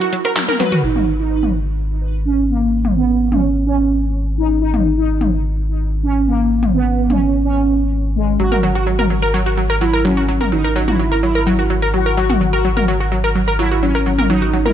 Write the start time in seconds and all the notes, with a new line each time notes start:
Already playing: F#4
0.01 F#4, closed hi-hat
0.13 F#3, open hi-hat
0.25 A#4, cross-stick, closed hi-hat
0.36 F#3, clap, closed hi-hat, high tom
0.48 A#4, closed hi-hat, high tom
0.60 F#3 B4, open hi-hat, mid tom
0.72 F#4, closed hi-hat, mid tom
0.83 G#1 D#4, crash
0.96 mid tom
1.19 D#4
1.43 mid tom
2.25 C#4
2.49 A#3
2.85 mid tom
2.96 B3
3.32 C#4, mid tom
3.67 C#4
4.38 D#4
4.62 D#4
4.74 mid tom
4.98 D#4
5.21 mid tom
6.03 C#4
6.27 A#3
6.63 mid tom
6.74 B3
7.10 C#4, mid tom
7.45 C#4
8.16 G#3
8.40 G#1 F#3 F#4
8.52 A#4, mid tom
8.63 F#3
8.75 F#4
8.87 F#3
8.99 A#4, mid tom
9.10 F#3
9.22 A#4
9.34 F#3
9.46 F#4
9.58 F#3
9.70 A#4
9.81 F#3 E4
9.94 A#4
10.05 F#3 C#4
10.17 F#4
10.28 F#3
10.41 A#4, mid tom
10.52 F#3 D#4
10.64 A#4
10.76 F#3
10.88 E4 F#4, mid tom
10.99 F#3
11.12 A#4
11.23 F#3 E4
11.35 A#4
11.47 F#3
11.59 F#4
11.70 F#3
11.82 A#4
11.94 F#3 F#4
12.06 A#4
12.17 F#3 F#4
12.30 F#4, mid tom
12.41 F#3
12.53 F#4 A#4
12.65 F#3
12.77 A#4, mid tom
12.88 F#3
13.00 F#4
13.12 F#3
13.24 A#4
13.35 F#3
13.48 A#4
13.59 F#3 E4
13.71 F#4
13.83 F#3 C#4
13.95 A#4
14.06 F#3
14.18 A#4, mid tom
14.30 F#3 D#4
14.42 F#4
14.53 F#3
14.66 E4 A#4, mid tom